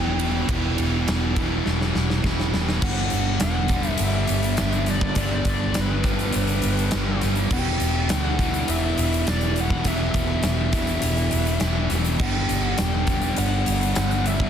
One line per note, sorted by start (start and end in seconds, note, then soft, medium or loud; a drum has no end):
0.00 0.43 E1 medium
0.00 0.46 E2 medium
0.00 0.48 E2 medium
0.00 0.48 B2 medium
0.00 0.49 B2 medium
0.00 0.46 E3 medium
0.00 0.48 E3 medium
0.00 0.49 E3 medium
0.00 0.49 B3 medium
0.00 2.80 B3 medium
0.00 2.80 D4 medium
0.00 0.48 E4 medium
0.00 2.80 E4 medium
0.00 0.51 G4 medium
0.00 2.79 G4 medium
0.00 2.80 D5 medium
0.00 2.22 G5 loud
0.19 ride medium
0.47 0.75 E1 loud
0.47 1.35 E2 loud
0.47 1.36 B2 loud
0.47 1.35 E3 loud
0.47 1.35 B3 loud
0.47 1.36 E4 loud
0.47 kick loud
0.47 ride loud
0.52 1.35 G4 loud
0.78 1.05 E1 medium
0.78 ride medium
1.08 1.60 E1 loud
1.08 snare loud
1.08 ride loud
1.36 2.21 E2 medium
1.36 2.23 B2 medium
1.36 2.23 E3 medium
1.36 2.22 E3 medium
1.36 2.24 B3 medium
1.36 2.23 E4 medium
1.36 2.23 G4 medium
1.36 kick loud
1.36 ride medium
1.66 1.93 E1 loud
1.66 snare medium
1.81 snare medium
1.95 2.22 E1 medium
1.95 snare medium
2.10 snare medium
2.23 2.51 E1 loud
2.23 2.81 E2 medium
2.23 2.82 B2 medium
2.23 2.81 E3 medium
2.23 2.82 E3 loud
2.23 2.82 B3 medium
2.23 2.83 E4 medium
2.23 kick medium
2.23 snare medium
2.27 2.83 G4 medium
2.40 snare medium
2.54 2.80 E1 medium
2.54 snare loud
2.69 snare medium
2.82 3.09 G1 loud
2.82 3.72 G2 medium
2.82 3.70 D3 loud
2.82 3.73 G3 medium
2.82 3.69 G3 loud
2.82 14.50 B3 medium
2.82 3.72 B3 loud
2.82 14.50 D4 medium
2.82 3.70 D4 loud
2.82 14.50 G4 medium
2.82 3.69 G4 loud
2.82 14.50 D5 medium
2.82 3.41 F#5 loud
2.82 kick loud
2.82 crash loud
3.10 3.39 G1 medium
3.10 closed hi-hat medium
3.40 3.94 E1 loud
3.40 3.89 F#5 loud
3.40 snare loud
3.40 closed hi-hat loud
3.68 4.57 D3 medium
3.68 4.60 G3 medium
3.68 4.58 B3 medium
3.68 4.58 D4 medium
3.68 4.60 G4 medium
3.68 kick medium
3.68 closed hi-hat medium
3.73 4.55 G2 medium
3.73 4.56 G3 medium
3.83 closed hi-hat medium
3.89 4.01 E5 loud
3.98 4.26 G1 loud
3.98 4.90 E5 loud
3.98 closed hi-hat loud
4.27 4.56 G1 medium
4.27 closed hi-hat medium
4.43 closed hi-hat soft
4.56 5.12 G1 loud
4.56 5.15 G2 medium
4.56 5.16 D3 medium
4.56 5.15 G3 medium
4.56 5.20 G3 medium
4.56 5.17 B3 medium
4.56 5.18 D4 medium
4.56 5.19 G4 medium
4.56 snare loud
4.56 closed hi-hat medium
4.72 closed hi-hat soft
4.86 5.48 D5 loud
4.86 snare soft
4.86 closed hi-hat medium
5.01 kick loud
5.15 5.43 G1 medium
5.15 6.03 G2 medium
5.15 6.04 D3 loud
5.15 6.06 G3 loud
5.15 6.06 B3 medium
5.15 6.05 D4 loud
5.15 kick loud
5.15 closed hi-hat loud
5.19 6.04 G3 loud
5.19 6.03 G4 medium
5.45 5.72 G1 medium
5.45 kick loud
5.45 closed hi-hat medium
5.50 5.79 D5 medium
5.74 6.29 G1 loud
5.74 snare loud
5.74 closed hi-hat loud
5.80 7.21 B4 medium
6.03 6.92 D3 medium
6.03 6.95 G3 medium
6.03 6.92 G3 medium
6.03 6.93 B3 medium
6.03 6.94 D4 medium
6.03 6.96 G4 loud
6.03 kick medium
6.03 closed hi-hat medium
6.08 6.91 G2 medium
6.19 closed hi-hat medium
6.33 6.61 G1 medium
6.33 closed hi-hat loud
6.47 closed hi-hat soft
6.62 6.90 G1 loud
6.62 closed hi-hat medium
6.77 closed hi-hat soft
6.91 7.20 G1 medium
6.91 7.50 G2 medium
6.91 7.50 D3 medium
6.91 7.51 G3 medium
6.91 7.52 B3 medium
6.91 7.53 D4 medium
6.91 snare loud
6.91 closed hi-hat loud
6.95 7.54 G3 medium
6.95 7.55 G4 medium
7.21 7.49 G1 medium
7.21 snare soft
7.21 closed hi-hat medium
7.35 closed hi-hat medium
7.51 7.78 E1 loud
7.51 8.42 E2 loud
7.51 8.39 B2 medium
7.51 8.42 E3 medium
7.51 8.38 E3 loud
7.51 8.41 B3 medium
7.51 12.16 E4 medium
7.51 8.40 E4 loud
7.51 8.11 G5 loud
7.51 kick loud
7.51 crash loud
7.55 8.38 G4 loud
7.80 8.07 E1 medium
7.80 closed hi-hat medium
8.09 8.62 D2 loud
8.09 8.22 G5 loud
8.09 snare loud
8.09 closed hi-hat loud
8.22 8.71 F#5 loud
8.39 9.25 E2 medium
8.39 9.26 B2 medium
8.39 9.26 E3 medium
8.39 9.28 B3 medium
8.39 9.26 E4 medium
8.39 9.30 G4 medium
8.39 kick medium
8.39 closed hi-hat medium
8.54 closed hi-hat medium
8.68 8.95 E1 loud
8.68 8.97 E5 loud
8.68 closed hi-hat loud
8.98 9.25 E1 medium
8.98 9.29 E5 medium
8.98 closed hi-hat medium
9.13 closed hi-hat medium
9.26 9.80 E1 loud
9.26 9.83 E2 medium
9.26 9.85 B2 medium
9.26 9.83 E3 medium
9.26 9.85 E3 medium
9.26 9.85 B3 medium
9.26 9.86 E4 medium
9.26 snare loud
9.26 closed hi-hat loud
9.30 9.87 G4 loud
9.30 9.59 D5 loud
9.41 closed hi-hat medium
9.56 closed hi-hat medium
9.60 9.89 F#5 loud
9.70 kick loud
9.84 10.12 E1 loud
9.84 10.72 E2 medium
9.84 10.72 B2 loud
9.84 10.72 E3 loud
9.84 10.71 E3 loud
9.84 10.75 B3 loud
9.84 10.73 E4 loud
9.84 10.72 G4 loud
9.84 11.88 E5 medium
9.84 kick loud
9.84 closed hi-hat loud
10.14 10.41 E1 loud
10.14 kick loud
10.14 closed hi-hat medium
10.43 10.97 E1 loud
10.43 snare loud
10.43 closed hi-hat loud
10.72 11.60 E2 medium
10.72 11.60 B2 medium
10.72 11.60 E3 medium
10.72 11.61 B3 medium
10.72 11.60 E4 medium
10.72 11.64 G4 medium
10.72 kick medium
10.72 closed hi-hat medium
10.76 11.60 E3 medium
10.87 closed hi-hat soft
11.02 11.29 E1 medium
11.02 closed hi-hat loud
11.16 closed hi-hat soft
11.31 11.59 E1 medium
11.31 closed hi-hat medium
11.45 closed hi-hat soft
11.60 11.88 E1 medium
11.60 12.18 E2 medium
11.60 12.19 B2 medium
11.60 12.19 E3 medium
11.60 12.20 B3 medium
11.60 12.20 E4 medium
11.60 snare loud
11.60 closed hi-hat medium
11.64 12.20 E3 medium
11.64 12.23 G4 medium
11.90 12.17 E1 medium
11.90 snare soft
11.90 closed hi-hat medium
12.04 closed hi-hat medium
12.19 12.47 G1 loud
12.19 13.12 G2 loud
12.19 13.08 D3 loud
12.19 13.11 G3 medium
12.19 13.08 G3 loud
12.19 13.10 B3 loud
12.19 13.09 D4 loud
12.19 13.07 G4 loud
12.19 12.65 G5 loud
12.19 kick loud
12.19 crash loud
12.49 12.76 G1 medium
12.49 closed hi-hat medium
12.65 12.80 F#5 loud
12.78 13.32 E1 loud
12.78 13.38 G5 loud
12.78 snare loud
12.78 closed hi-hat loud
13.07 13.95 D3 medium
13.07 13.98 G3 medium
13.07 13.97 B3 medium
13.07 13.98 D4 medium
13.07 13.99 G4 medium
13.07 kick medium
13.07 closed hi-hat medium
13.11 13.94 G2 medium
13.11 13.95 G3 medium
13.22 closed hi-hat medium
13.37 13.64 G1 loud
13.37 14.29 F#5 loud
13.37 closed hi-hat loud
13.66 13.94 G1 medium
13.66 closed hi-hat medium
13.81 closed hi-hat medium
13.95 14.49 G1 medium
13.95 14.50 G2 medium
13.95 14.50 D3 medium
13.95 14.50 G3 medium
13.95 14.50 B3 loud
13.95 14.50 D4 medium
13.95 snare loud
13.95 closed hi-hat loud
13.99 14.50 G4 medium
14.11 closed hi-hat medium
14.26 14.50 E5 loud
14.26 closed hi-hat medium
14.40 kick medium